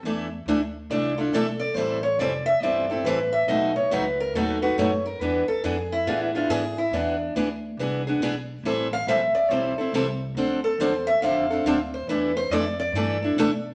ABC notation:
X:1
M:4/4
L:1/16
Q:"Swing" 1/4=140
K:Ephr
V:1 name="Steel-string acoustic guitar"
z8 d2 F2 A2 d2 | c2 ^c2 d2 e2 d2 G2 B2 e2 | ^d2 ^c2 B2 _B2 A2 =B2 c2 _B2 | B2 A2 ^G2 E2 (3F2 E2 F2 G2 E2 |
D4 z12 | z2 f2 e2 d2 c6 z2 | z2 A2 c2 e2 f6 c2 | B2 c2 d2 d8- d z |]
V:2 name="Steel-string acoustic guitar"
[E,A,DEA]2 z2 [E,A,DEA]2 z2 [E,A,DEA]2 [DEA]2 [E,A,DEA]2 z2 | [E,G,CEA]2 z2 [E,G,CEA]2 z2 [E,G,CEA]2 [CEA]2 [E,G,CEA]2 z2 | [B,,^F,A,^D^F]2 z2 [B,,F,A,DF]2 z2 [B,,F,A,DF]2 [A,DF]2 [B,,F,A,DF]2 z2 | [E,B,D^G]2 z2 [E,B,DG]2 z2 [E,B,DG]2 [B,DG]2 [E,B,DG]2 z2 |
[E,B,D^G]2 z2 [E,B,DG]2 z2 [E,B,DG]2 [B,DG]2 [E,B,DG]2 z2 | [E,G,CEA]2 z2 [E,G,CEA]2 z2 [E,G,CEA]2 [CEA]2 [E,G,CEA]2 z2 | [D,F,CDA]2 z2 [D,F,CDA]2 z2 [D,F,CDA]2 [CDA]2 [D,F,CDA]2 z2 | [E,A,DEA]2 z2 [E,A,DEA]2 z2 [E,A,DEA]2 [DEA]2 [E,A,DEA]2 z2 |]
V:3 name="Upright bass" clef=bass
E,,4 D,,4 C,,4 B,,,4 | A,,,4 F,,,4 G,,,4 A,,,4 | B,,,4 ^C,,4 ^D,,4 ^F,,4 | E,,2 z2 F,,4 A,,4 ^G,,4 |
E,,4 D,,4 C,,4 B,,,4 | A,,,4 _B,,,2 z2 =B,,,2 z2 C,,4 | D,,4 E,,4 F,,4 D,,4 | E,,4 F,,4 G,,4 B,,4 |]